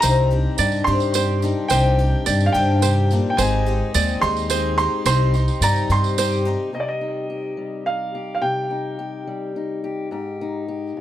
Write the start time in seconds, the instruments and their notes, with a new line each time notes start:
0.00 upright bass C2, steel-string acoustic guitar C3 D#4, twelve-string acoustic guitar C3 D#3 G3 C4, ukulele C5, upright piano A#5, tambourine
0.05 twelve-string acoustic guitar D4 G4
0.31 twelve-string acoustic guitar G3 C4 D4 G4
0.58 upright bass G2, twelve-string acoustic guitar G3 C4 D4 G4, steel-string acoustic guitar D4, ukulele D5, tambourine
0.72 tambourine
0.84 upright bass G2, twelve-string acoustic guitar D#3 G3 C4 D4 G4, steel-string acoustic guitar G3, upright piano C6
0.88 twelve-string acoustic guitar C3
1.00 tambourine
1.14 twelve-string acoustic guitar G3 C4 D4 G4, steel-string acoustic guitar G4, ukulele C5, tambourine
1.42 twelve-string acoustic guitar G3 C4 D4 G4, steel-string acoustic guitar D#4, tambourine
1.68 upright bass C2, twelve-string acoustic guitar C3 D#3 G3 C4, steel-string acoustic guitar C3 D#4, ukulele C5, upright piano G5, tambourine
1.73 twelve-string acoustic guitar D4 G4
1.99 twelve-string acoustic guitar G3 C4 D4 G4
2.26 upright bass G2, twelve-string acoustic guitar G3 C4 D4 G4, steel-string acoustic guitar D4, ukulele D5, tambourine
2.40 tambourine
2.46 upright piano F5
2.52 upright bass G2, twelve-string acoustic guitar C3 D#3 G3 C4 D4 G4, steel-string acoustic guitar D3, upright piano G5
2.82 steel-string acoustic guitar C3, twelve-string acoustic guitar G3 C4 D4 G4, ukulele C5, tambourine
3.11 steel-string acoustic guitar A#2, twelve-string acoustic guitar G3 C4 D4 G4, tambourine
3.30 upright piano G5
3.37 upright bass G#1, steel-string acoustic guitar G#2 G#3 C4 D#4, twelve-string acoustic guitar G#3 C4 D#4 G4, ukulele C5, upright piano G#5, tambourine
3.42 steel-string acoustic guitar G#4
3.66 twelve-string acoustic guitar C4 D#4 G4
3.94 upright bass D#2, twelve-string acoustic guitar G#3 C4 D#4 G4, steel-string acoustic guitar C4, ukulele D5, tambourine
4.09 tambourine
4.21 upright bass D#2, steel-string acoustic guitar G#3, twelve-string acoustic guitar G#3 C4 D#4 G4, upright piano C6
4.37 tambourine
4.50 twelve-string acoustic guitar G#3 C4 D#4 G4, steel-string acoustic guitar G#4, ukulele C5, tambourine
4.78 twelve-string acoustic guitar C4 D#4 G4, steel-string acoustic guitar D#4, upright piano C6, tambourine
5.06 upright bass C2, steel-string acoustic guitar C3 D#4, twelve-string acoustic guitar C3 G3 C4 D#4 G4, ukulele C5, upright piano C6, tambourine
5.34 twelve-string acoustic guitar C4 D#4 G4, tambourine
5.48 tambourine
5.61 upright bass G2, twelve-string acoustic guitar G3 C4 D#4 G4, steel-string acoustic guitar C4, ukulele D5, upright piano A#5, tambourine
5.76 tambourine
5.89 upright bass G2, twelve-string acoustic guitar C3 G3 C4 D#4 G4, steel-string acoustic guitar G3, upright piano C6, tambourine
6.04 tambourine
6.18 twelve-string acoustic guitar G3 C4 D#4 G4, steel-string acoustic guitar G4, ukulele C5, tambourine
6.32 tambourine
6.45 twelve-string acoustic guitar C4 D#4 G4, steel-string acoustic guitar D#4
6.72 steel-string acoustic guitar C3 G3 C4 D#4 G4, upright piano D#5
6.80 upright piano D5
6.89 upright piano D#5
7.01 steel-string acoustic guitar D#4
7.30 steel-string acoustic guitar G4
7.57 steel-string acoustic guitar G3
7.86 steel-string acoustic guitar D#4, upright piano F5
8.15 steel-string acoustic guitar G4
8.35 upright piano F5
8.42 steel-string acoustic guitar C3 G4, upright piano G5
8.71 steel-string acoustic guitar D#4
8.99 steel-string acoustic guitar G4
9.27 steel-string acoustic guitar G3
9.56 steel-string acoustic guitar D#4
9.84 steel-string acoustic guitar G4
10.11 steel-string acoustic guitar G#2 G4
10.41 steel-string acoustic guitar D#4
10.68 steel-string acoustic guitar G4
10.97 steel-string acoustic guitar A#2